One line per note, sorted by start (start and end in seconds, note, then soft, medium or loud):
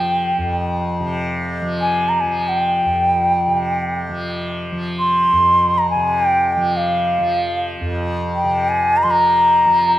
0.00 0.38 F2 soft
0.00 1.00 C3 soft
0.00 1.62 F3 medium
0.00 0.87 G5 medium
0.38 2.85 F2 medium
1.00 3.46 C3 medium
1.62 2.23 F3 medium
1.81 2.10 G#5 medium
2.09 2.22 A#5 medium
2.21 4.09 F3 soft
2.21 2.50 G#5 medium
2.49 4.04 G5 medium
2.85 5.32 F2 medium
3.47 5.95 C3 medium
4.09 4.72 F3 soft
4.72 6.57 F3 medium
4.99 5.80 C6 medium
5.33 7.81 F2 medium
5.78 5.90 A#5 medium
5.90 6.23 G#5 medium
5.95 8.43 C3 medium
6.23 6.52 G5 medium
6.52 6.78 G5 medium
6.57 7.19 F3 medium
6.77 7.68 F5 medium
7.19 9.04 F3 medium
7.81 9.99 F2 medium
8.35 8.70 G5 medium
8.44 9.99 C3 medium
8.69 8.98 G#5 medium
8.97 9.05 A#5 loud
9.03 9.66 F3 medium
9.03 9.12 C6 medium
9.11 9.99 A#5 loud
9.66 9.99 F3 medium